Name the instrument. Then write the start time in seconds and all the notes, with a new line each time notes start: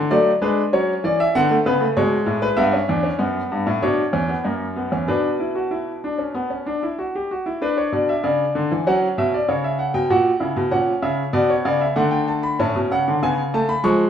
grand piano
Already playing: D3
0.11 F#3 A3 D5
0.42 G#3 D4 B4
0.73 F#3 C#4 C#5
1.04 E3 D5
1.20 E5
1.35 D3 B3 F#5
1.51 A3
1.66 C#3 B3 B4
1.81 A3
1.97 B2 G#3 C#5
2.26 A2
2.42 B4
2.57 G2 B3 E5
2.73 C#4
2.89 E2 D4
3.03 C#4
3.18 F#2 B3
3.52 G2
3.67 A2
3.82 B2 D4 C#5
4.13 E2 C#4
4.29 B3
4.44 F#2 A#3
4.76 B3
4.92 E2 C#4
5.08 B2 D4 B4
5.40 E4
5.55 F#4
5.71 E4
6.04 D4
6.18 C#4
6.34 B3
6.50 C#4
6.66 D4
6.83 E4
6.99 F#4
7.15 G4
7.31 F#4
7.46 E4
7.62 D4 B4
7.77 C#5
7.92 B2 D5
8.09 E5
8.24 C#3 D5
8.55 D3
8.72 E3
8.87 F#3 C#4 F#5
9.18 B2 E5
9.34 D5
9.48 C#3 C#5
9.64 E5
9.79 F#5
9.94 B2 G5
10.10 A#2 F#4 F#5
10.40 C#3 E4
10.56 B2
10.71 A#2 C#4 F#5
11.02 C#3 E5
11.33 B2 B3 D5
11.50 C#5
11.65 C#3 D5
11.81 E5
11.96 D3 A3 F#5
12.11 G5
12.28 A5
12.43 B5
12.59 A2 C#4 A5
12.75 B2
12.92 C#3 F#5
13.08 D3
13.23 C#3 B3 G#5
13.54 A3 A5
13.69 B5
13.84 F3 G#3 C#6